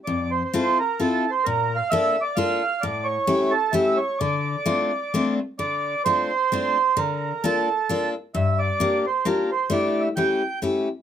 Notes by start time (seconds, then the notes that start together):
0.05 F2 D5
0.31 C5
0.45 C5
0.54 C4 E4 F4 A4
0.61 C5
0.79 A#4
1.00 C4 E4 F4 A4
1.30 C5
1.44 A#2 A#4
1.76 F5
1.90 A#3 D4 F4 A4 E5
2.21 D5
2.36 A#3 D4 F4 A4 F5
2.81 A2 D5
3.04 C#5
3.27 A3 C#4 E4 G4
3.51 A4
3.72 A3 C#4 E4 G4 E5
3.97 C#5
4.19 D3 D5
4.66 A3 C4 D4 F4
5.14 A3 C4 D4 F4
5.59 D3 D5
6.05 A3 C4 D4 F4 C5
6.52 A3 C4 D4 F4
6.97 D3 A#4
7.44 A#3 D4 F4 A4
7.89 A#3 D4 F4 A4
8.35 G2 E5
8.59 D5
8.80 A#3 D4 F4 G4
9.06 C5
9.25 A#3 D4 F4 G4 A#4
9.51 C5
9.70 A3 D4 E4 G4 D5
10.01 E5
10.16 A3 C#4 E4 G4 G5
10.62 A3 C#4 E4 G4